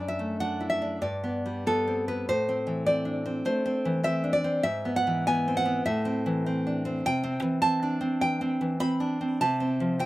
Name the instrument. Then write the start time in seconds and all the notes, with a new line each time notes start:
nylon-string guitar
Already playing: F#2
0.00 D4
0.08 E5
0.19 A3
0.40 D4 F#5
0.60 E4
0.70 E5
0.82 D4
1.02 G2 D5
1.24 B3
1.46 G3
1.67 B3 A4
1.88 C4
2.08 B3 B4
2.29 A2 C5
2.49 C4
2.67 E3
2.86 C4 D5
3.05 D4
3.26 C4
3.45 A3 C5
3.66 C4
3.85 E3
4.04 C4 E5
4.24 D4
4.33 D5
4.44 C4
4.63 G#2 E5
4.85 B3
4.96 F#5
5.07 E3
5.27 B3 G#5
5.48 C4
5.57 F#5
5.65 B3
5.86 A2 E5
6.05 C4
6.26 E3
6.46 C4
6.67 D4
6.85 C4
7.06 C3 G5
7.24 C4
7.42 E3
7.62 C4 A5
7.83 D4
8.01 C4
8.21 E3 G5
8.41 C4
8.61 E3
8.80 C4 B5
9.00 D4
9.21 C4
9.41 C3 A5
9.60 C4
9.80 F3
9.99 C4 G5